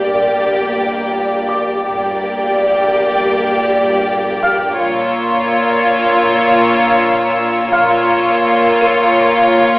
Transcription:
0, 0, Header, 1, 9, 480
1, 0, Start_track
1, 0, Tempo, 731707
1, 1224, Time_signature, 4, 2, 24, 8
1, 6422, End_track
2, 0, Start_track
2, 0, Title_t, "Grand piano"
2, 0, Program_c, 0, 0
2, 0, Control_c, 0, 64, 127
2, 0, Note_on_c, 0, 89, 37
2, 722, Note_off_c, 0, 89, 0
2, 975, Note_on_c, 0, 86, 42
2, 2394, Note_off_c, 0, 86, 0
2, 2904, Note_on_c, 0, 77, 33
2, 2904, Note_on_c, 0, 89, 49
2, 3157, Control_c, 0, 64, 0
2, 3259, Control_c, 0, 64, 127
2, 4318, Note_off_c, 0, 77, 0
2, 4318, Note_off_c, 0, 89, 0
2, 5063, Note_on_c, 0, 77, 38
2, 5066, Note_on_c, 0, 89, 45
2, 5778, Note_on_c, 0, 99, 41
2, 5781, Note_on_c, 0, 70, 35
2, 6422, Note_off_c, 0, 70, 0
2, 6422, Note_off_c, 0, 77, 0
2, 6422, Note_off_c, 0, 89, 0
2, 6422, Note_off_c, 0, 99, 0
2, 6422, End_track
3, 0, Start_track
3, 0, Title_t, "Violin section"
3, 0, Program_c, 1, 48
3, 3140, Note_on_c, 1, 82, 40
3, 3140, Note_on_c, 1, 88, 38
3, 6236, Note_off_c, 1, 88, 0
3, 6422, Note_off_c, 1, 82, 0
3, 6422, End_track
4, 0, Start_track
4, 0, Title_t, "Violin section"
4, 0, Program_c, 2, 48
4, 0, Note_on_c, 2, 74, 41
4, 1199, Note_off_c, 2, 74, 0
4, 1229, Note_on_c, 2, 74, 54
4, 3120, Note_off_c, 2, 74, 0
4, 3144, Note_on_c, 2, 73, 54
4, 5038, Note_off_c, 2, 73, 0
4, 5064, Note_on_c, 2, 73, 58
4, 6422, Note_off_c, 2, 73, 0
4, 6422, End_track
5, 0, Start_track
5, 0, Title_t, "Violin section"
5, 0, Program_c, 3, 48
5, 0, Note_on_c, 3, 67, 42
5, 1201, Note_off_c, 3, 67, 0
5, 1235, Note_on_c, 3, 67, 50
5, 3124, Note_off_c, 3, 67, 0
5, 3149, Note_on_c, 3, 65, 55
5, 5040, Note_off_c, 3, 65, 0
5, 5076, Note_on_c, 3, 65, 61
5, 6422, Note_off_c, 3, 65, 0
5, 6422, End_track
6, 0, Start_track
6, 0, Title_t, "Viola section"
6, 0, Program_c, 4, 48
6, 0, Note_on_c, 4, 58, 39
6, 1198, Note_off_c, 4, 58, 0
6, 1227, Note_on_c, 4, 58, 46
6, 3119, Note_off_c, 4, 58, 0
6, 3148, Note_on_c, 4, 58, 50
6, 5040, Note_off_c, 4, 58, 0
6, 5065, Note_on_c, 4, 58, 55
6, 6422, Note_off_c, 4, 58, 0
6, 6422, End_track
7, 0, Start_track
7, 0, Title_t, "Cello section"
7, 0, Program_c, 5, 48
7, 0, Note_on_c, 5, 43, 38
7, 1217, Note_off_c, 5, 43, 0
7, 1225, Note_on_c, 5, 43, 49
7, 3118, Note_off_c, 5, 43, 0
7, 3141, Note_on_c, 5, 46, 51
7, 5036, Note_off_c, 5, 46, 0
7, 5064, Note_on_c, 5, 46, 50
7, 6422, Note_off_c, 5, 46, 0
7, 6422, End_track
8, 0, Start_track
8, 0, Title_t, "Double bass section"
8, 0, Program_c, 6, 48
8, 1220, Note_on_c, 6, 31, 41
8, 1676, Note_off_c, 6, 31, 0
8, 3143, Note_on_c, 6, 34, 47
8, 3597, Note_off_c, 6, 34, 0
8, 5061, Note_on_c, 6, 34, 56
8, 5517, Note_off_c, 6, 34, 0
8, 6422, End_track
9, 0, Start_track
9, 0, Title_t, "Synth drone"
9, 0, Program_c, 7, 95
9, 0, Note_on_c, 7, 34, 57
9, 1197, Note_off_c, 7, 34, 0
9, 1223, Note_on_c, 7, 34, 62
9, 3117, Note_off_c, 7, 34, 0
9, 3141, Note_on_c, 7, 34, 63
9, 5037, Note_off_c, 7, 34, 0
9, 5064, Note_on_c, 7, 34, 65
9, 6422, Note_off_c, 7, 34, 0
9, 6422, End_track
0, 0, End_of_file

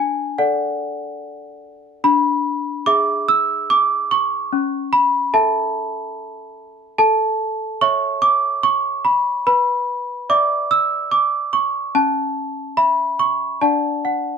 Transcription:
0, 0, Header, 1, 2, 480
1, 0, Start_track
1, 0, Key_signature, 3, "major"
1, 0, Tempo, 826446
1, 1184, Time_signature, 3, 2, 24, 8
1, 6458, Tempo, 839161
1, 8322, End_track
2, 0, Start_track
2, 0, Title_t, "Celesta"
2, 0, Program_c, 0, 8
2, 0, Control_c, 0, 64, 127
2, 0, Note_on_c, 0, 62, 56
2, 0, Note_on_c, 0, 80, 75
2, 0, Note_on_c, 0, 81, 73
2, 205, Note_off_c, 0, 62, 0
2, 219, Note_off_c, 0, 80, 0
2, 223, Note_on_c, 0, 78, 75
2, 224, Note_on_c, 0, 69, 45
2, 225, Note_on_c, 0, 74, 48
2, 944, Note_off_c, 0, 78, 0
2, 1162, Note_off_c, 0, 69, 0
2, 1163, Note_off_c, 0, 74, 0
2, 1184, Note_on_c, 0, 62, 59
2, 1185, Note_on_c, 0, 83, 95
2, 1194, Control_c, 0, 64, 0
2, 1198, Note_off_c, 0, 81, 0
2, 1287, Control_c, 0, 64, 127
2, 1651, Note_off_c, 0, 62, 0
2, 1663, Note_on_c, 0, 86, 98
2, 1665, Note_on_c, 0, 68, 51
2, 1666, Note_off_c, 0, 83, 0
2, 1667, Note_on_c, 0, 76, 54
2, 1906, Note_off_c, 0, 86, 0
2, 1908, Note_on_c, 0, 88, 106
2, 2149, Note_off_c, 0, 88, 0
2, 2150, Note_on_c, 0, 86, 97
2, 2389, Note_off_c, 0, 86, 0
2, 2389, Note_on_c, 0, 85, 88
2, 2605, Note_off_c, 0, 68, 0
2, 2606, Note_off_c, 0, 76, 0
2, 2629, Note_on_c, 0, 61, 62
2, 2640, Control_c, 0, 64, 0
2, 2738, Control_c, 0, 64, 127
2, 2861, Note_on_c, 0, 83, 92
2, 2867, Note_off_c, 0, 85, 0
2, 3091, Note_off_c, 0, 61, 0
2, 3099, Note_on_c, 0, 69, 51
2, 3100, Note_on_c, 0, 81, 90
2, 3101, Note_on_c, 0, 76, 58
2, 3102, Note_off_c, 0, 83, 0
2, 3818, Note_off_c, 0, 81, 0
2, 4033, Note_off_c, 0, 69, 0
2, 4034, Note_off_c, 0, 76, 0
2, 4056, Note_on_c, 0, 81, 97
2, 4058, Note_on_c, 0, 69, 61
2, 4070, Control_c, 0, 64, 0
2, 4159, Control_c, 0, 64, 127
2, 4523, Note_off_c, 0, 69, 0
2, 4536, Note_off_c, 0, 81, 0
2, 4538, Note_on_c, 0, 85, 102
2, 4539, Note_on_c, 0, 73, 50
2, 4541, Note_on_c, 0, 76, 55
2, 4773, Note_on_c, 0, 86, 99
2, 4777, Note_off_c, 0, 85, 0
2, 5015, Note_off_c, 0, 86, 0
2, 5015, Note_on_c, 0, 85, 100
2, 5254, Note_on_c, 0, 83, 85
2, 5256, Note_off_c, 0, 85, 0
2, 5475, Note_off_c, 0, 73, 0
2, 5476, Note_off_c, 0, 76, 0
2, 5492, Note_off_c, 0, 83, 0
2, 5498, Note_on_c, 0, 71, 63
2, 5499, Note_on_c, 0, 83, 90
2, 5509, Control_c, 0, 64, 0
2, 5598, Control_c, 0, 64, 127
2, 5963, Note_off_c, 0, 71, 0
2, 5978, Note_off_c, 0, 83, 0
2, 5979, Note_on_c, 0, 74, 48
2, 5981, Note_on_c, 0, 76, 49
2, 5981, Note_on_c, 0, 86, 91
2, 6218, Note_off_c, 0, 86, 0
2, 6220, Note_on_c, 0, 88, 92
2, 6455, Note_on_c, 0, 86, 84
2, 6458, Note_off_c, 0, 88, 0
2, 6693, Note_off_c, 0, 86, 0
2, 6693, Note_on_c, 0, 85, 85
2, 6909, Note_off_c, 0, 74, 0
2, 6910, Note_off_c, 0, 76, 0
2, 6931, Note_off_c, 0, 85, 0
2, 6932, Note_on_c, 0, 61, 57
2, 6933, Note_on_c, 0, 81, 81
2, 6940, Control_c, 0, 64, 0
2, 7025, Control_c, 0, 64, 127
2, 7392, Note_off_c, 0, 61, 0
2, 7403, Note_on_c, 0, 76, 48
2, 7403, Note_on_c, 0, 83, 84
2, 7407, Note_off_c, 0, 81, 0
2, 7644, Note_off_c, 0, 83, 0
2, 7645, Note_on_c, 0, 85, 78
2, 7863, Note_off_c, 0, 76, 0
2, 7885, Note_on_c, 0, 62, 47
2, 7885, Note_on_c, 0, 74, 38
2, 7885, Note_on_c, 0, 81, 71
2, 7887, Note_off_c, 0, 85, 0
2, 7889, Note_on_c, 0, 78, 38
2, 7898, Control_c, 0, 64, 0
2, 7989, Control_c, 0, 64, 127
2, 8126, Note_off_c, 0, 78, 0
2, 8131, Note_off_c, 0, 81, 0
2, 8133, Note_on_c, 0, 78, 63
2, 8322, Note_off_c, 0, 62, 0
2, 8322, Note_off_c, 0, 74, 0
2, 8322, Note_off_c, 0, 78, 0
2, 8322, End_track
0, 0, End_of_file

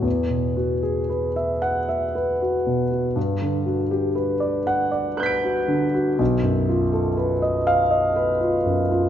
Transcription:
0, 0, Header, 1, 2, 480
1, 0, Start_track
1, 0, Tempo, 1058201
1, 23, Time_signature, 6, 3, 24, 8
1, 983, Tempo, 1008403
1, 2903, Tempo, 985222
1, 4312, End_track
2, 0, Start_track
2, 0, Title_t, "Grand piano"
2, 0, Program_c, 0, 0
2, 0, Control_c, 0, 64, 127
2, 9, Note_on_c, 0, 40, 43
2, 31, Control_c, 0, 64, 0
2, 98, Control_c, 0, 64, 127
2, 131, Note_on_c, 0, 47, 30
2, 257, Note_on_c, 0, 66, 34
2, 333, Note_off_c, 0, 47, 0
2, 376, Note_on_c, 0, 68, 39
2, 455, Note_off_c, 0, 66, 0
2, 497, Note_on_c, 0, 71, 36
2, 573, Note_off_c, 0, 68, 0
2, 618, Note_on_c, 0, 76, 38
2, 693, Note_off_c, 0, 71, 0
2, 734, Note_on_c, 0, 78, 55
2, 814, Note_off_c, 0, 76, 0
2, 856, Note_on_c, 0, 76, 34
2, 930, Note_off_c, 0, 78, 0
2, 977, Note_on_c, 0, 71, 40
2, 1051, Note_off_c, 0, 76, 0
2, 1103, Note_on_c, 0, 66, 33
2, 1172, Note_off_c, 0, 71, 0
2, 1220, Note_on_c, 0, 47, 37
2, 1292, Note_off_c, 0, 66, 0
2, 1337, Note_on_c, 0, 66, 36
2, 1409, Note_off_c, 0, 47, 0
2, 1431, Note_off_c, 0, 40, 0
2, 1454, Note_on_c, 0, 43, 48
2, 1456, Note_off_c, 0, 66, 0
2, 1464, Control_c, 0, 64, 0
2, 1546, Control_c, 0, 64, 127
2, 1578, Note_on_c, 0, 50, 34
2, 1692, Note_on_c, 0, 66, 34
2, 1769, Note_off_c, 0, 50, 0
2, 1814, Note_on_c, 0, 67, 38
2, 1887, Note_off_c, 0, 66, 0
2, 1928, Note_on_c, 0, 71, 41
2, 2007, Note_off_c, 0, 67, 0
2, 2047, Note_on_c, 0, 74, 41
2, 2125, Note_off_c, 0, 71, 0
2, 2174, Note_on_c, 0, 78, 61
2, 2246, Note_off_c, 0, 74, 0
2, 2291, Note_on_c, 0, 74, 39
2, 2372, Note_off_c, 0, 78, 0
2, 2413, Note_on_c, 0, 71, 44
2, 2414, Note_on_c, 0, 90, 34
2, 2425, Note_on_c, 0, 91, 35
2, 2441, Note_on_c, 0, 95, 36
2, 2454, Note_on_c, 0, 98, 34
2, 2492, Note_off_c, 0, 74, 0
2, 2542, Note_on_c, 0, 66, 36
2, 2614, Note_off_c, 0, 71, 0
2, 2655, Note_on_c, 0, 50, 39
2, 2736, Note_off_c, 0, 66, 0
2, 2781, Note_on_c, 0, 66, 43
2, 2850, Note_off_c, 0, 50, 0
2, 2879, Note_off_c, 0, 90, 0
2, 2882, Note_off_c, 0, 43, 0
2, 2885, Note_off_c, 0, 91, 0
2, 2893, Note_off_c, 0, 95, 0
2, 2897, Note_on_c, 0, 35, 52
2, 2899, Note_off_c, 0, 98, 0
2, 2900, Note_off_c, 0, 66, 0
2, 2912, Control_c, 0, 64, 0
2, 2978, Control_c, 0, 64, 127
2, 3015, Note_on_c, 0, 42, 37
2, 3141, Note_on_c, 0, 65, 38
2, 3208, Note_off_c, 0, 42, 0
2, 3258, Note_on_c, 0, 69, 41
2, 3331, Note_off_c, 0, 65, 0
2, 3377, Note_on_c, 0, 71, 43
2, 3451, Note_off_c, 0, 69, 0
2, 3498, Note_on_c, 0, 75, 42
2, 3571, Note_off_c, 0, 71, 0
2, 3618, Note_on_c, 0, 77, 62
2, 3692, Note_off_c, 0, 75, 0
2, 3735, Note_on_c, 0, 75, 43
2, 3812, Note_off_c, 0, 77, 0
2, 3857, Note_on_c, 0, 71, 45
2, 3929, Note_off_c, 0, 75, 0
2, 3978, Note_on_c, 0, 65, 40
2, 4051, Note_off_c, 0, 71, 0
2, 4099, Note_on_c, 0, 42, 38
2, 4172, Note_off_c, 0, 65, 0
2, 4225, Note_on_c, 0, 65, 41
2, 4293, Note_off_c, 0, 42, 0
2, 4312, Note_off_c, 0, 35, 0
2, 4312, Note_off_c, 0, 65, 0
2, 4312, End_track
0, 0, End_of_file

